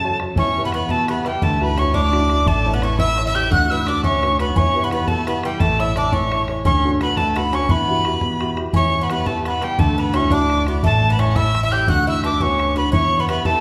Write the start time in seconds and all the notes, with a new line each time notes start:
Already playing: F#2 C#3 A3 A4 A5
0.04 F#4 A4 C#5
0.20 F#4 A4 C#5, bodhran
0.36 E2 E3 C#4 C#5 C#6, bodhran
0.57 E4 G4 B4
0.64 B3 B4 B5
0.72 B3 E4 G4 B4 B5, bodhran
0.89 B2 A3 A4 A5, bodhran
1.08 B3 E4 G4 B4 B5, bodhran
1.24 G3 E4 G4 B4 G5, bodhran
1.42 D2 D3 A3 A4 A5, bodhran
1.60 D4 E4 F#4 B4 B5
1.77 C#4 D4 E4 F#4 C#5 C#6, bodhran
1.94 A3 D4 D5 D6, bodhran
2.12 D4 E4 F#4, bodhran
2.30 D4 E4 F#4, bodhran
2.46 A1 A3 A4 A5, bodhran
2.65 E4 A4 C#5
2.73 B3 B4 B5
2.81 C#4 E4 A4 C#5 C#6, bodhran
2.98 E3 E4 E5 E6, bodhran
3.17 E4 A4 C#5, bodhran
3.26 E4 E5 E6
3.35 E4 G4 A4 C#5 G6, bodhran
3.50 D2 D3 F#4 F#5 F#6, bodhran
3.70 D4 E4 F#4 B4 E5 E6
3.84 D4 F#4 B4 D5 D6 E6, bodhran
3.88 D4
4.04 A3 C#4 C#5 C#6, bodhran
4.22 D4 F#4 B4, bodhran
4.39 B3 D4 F#4 B4 B5, bodhran
4.56 E2 E3 C#4 C#5 C#6, bodhran
4.74 E4 G4 B4
4.83 B3 B4 B5
4.91 B3 E4 G4 B4 B5, bodhran
5.07 B2 A3 A4 A5, bodhran
5.27 B3 E4 G4 B4 B5, bodhran
5.43 G3 E4 G4 B4 G5, bodhran
5.60 A1 A3 A4 A5, bodhran
5.79 E4 A4 C#5 E5 E6
5.95 D4 E4 A4 C#5 D5 D6, bodhran
6.12 E3 C#4 C#5 C#6, bodhran
6.32 E4 A4 C#5, bodhran
6.48 E4 A4 C#5, bodhran
6.65 D2 D3 C#4 C#5 C#6, bodhran
6.84 D4 F#4 A4
7.01 B3 D4 F#4 A4 B4 B5, bodhran
7.16 A3 A4 A5, bodhran
7.36 B3 D4 F#4 A4 B4 B5, bodhran
7.52 C#4 D4 F#4 A4 C#5 C#6, bodhran
7.69 E2 E3 B3 B4 B5, bodhran
7.88 E4 F#4 G4
8.05 E4 F#4 G4, bodhran
8.21 B2, bodhran
8.40 E4 F#4 G4, bodhran
8.57 E4 F#4 G4, bodhran
8.73 E2 E3 C#4 C#5 C#6, bodhran
9.01 B3 B4 B5
9.09 B3 E4 G4 B4 B5, bodhran
9.26 A3 B3 E4 G4 A4 A5, bodhran
9.45 B3 B4 B5, bodhran
9.61 G3 B3 E4 G4 G5, bodhran
9.79 D2 D3 A3 A4 A5, bodhran
9.98 B3 B4 B5
10.14 C#4 D4 E4 F#4 C#5 C#6, bodhran
10.30 D4 E4 F#4 D5 D6, bodhran
10.50 bodhran
10.67 B3 D4 E4 F#4, bodhran
10.83 A1 A3 A4 A5, bodhran
11.10 B3 B4 B5
11.19 C#4 E4 A4 C#5 C#6, bodhran
11.30 F#5
11.35 E4 A4 C#5 E5 E6, bodhran
11.55 bodhran
11.63 E4 E5 E6
11.72 E4 G4 A4 C#5 G5 G6, bodhran
11.88 D2 D3 F#4 F#5 F#6, bodhran
12.07 E4 E5 E6
12.24 D4 F#4 B4 D6, bodhran
12.40 B3 C#4 F#4 B4 C#5 C#6, bodhran
12.59 bodhran
12.76 B3 D4 F#4 B4 B5, bodhran
12.92 E2 E3 C#4 C#5 C#6, bodhran
13.20 B3 B4 B5
13.28 B3 E4 G4 B4 B5, bodhran
13.44 A3 E4 G4 A4 B4 A5, bodhran